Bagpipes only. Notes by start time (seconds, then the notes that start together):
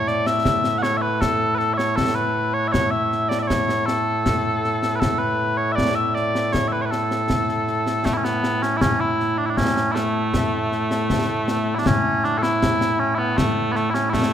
Already playing: A2 A3
0.08 D5
0.27 E5
0.78 F#5
0.83 C#5
0.97 E5
1.02 B4
1.21 A4
1.55 A4 B4
1.74 C#5 E5
1.96 A4
2.15 B4
2.54 C#5
2.68 E5
2.72 C#5
2.91 E5
3.29 D5
3.39 D5 E5
3.48 C#5
3.86 A4
4.96 B4
5.00 A4
5.18 B4
5.57 C#5
5.72 D5 E5
5.95 E5
6.15 D5
6.53 C#5
6.68 E5
6.72 B4
6.81 B4 C#5
6.91 A4
8.05 A3
8.14 C#4 E4
8.24 B3
8.63 C#4
8.77 E4
8.81 C#4
9.00 E4
9.38 D4
9.46 D4 E4
9.57 C#4
9.92 A3 E4
11.75 D4 E4
11.86 C#4
12.24 D4
12.38 A4
12.42 E4
13.00 C#4
13.15 B3 E4
13.37 A3
13.72 B3
13.76 A3
13.90 C#4 E4
14.10 E4
14.14 A3